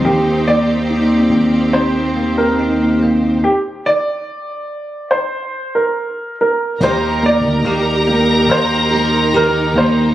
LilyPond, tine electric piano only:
\new Staff \with { instrumentName = "Tine electric piano" } { \time 4/4 \key ees \major \tempo 4 = 71 ees8 bes8 ees'8 bes8 c'8 bes8 ees'8 bes8 | r1 | ees8 bes8 g'8 bes4. g'8 bes8 | }